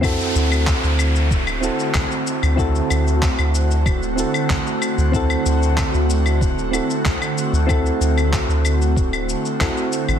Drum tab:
SH |xxxxxxxxxxxxxxxx|xxxxxxxxxxxxxxxx|xxxxxxxxxxxxxxxx|xxxxxxxxxxxxxxxx|
CL |x--x--x--x--x--x|--x--x--x--x--x-|-x--x--x--x--x--|x--x--x--x--x--x|
CP |----x-------x---|----x-------x---|----x-------x---|----x-------x---|
BD |o---o---o---o---|o---o---o---o---|o---o---o---o---|o---o---o---o---|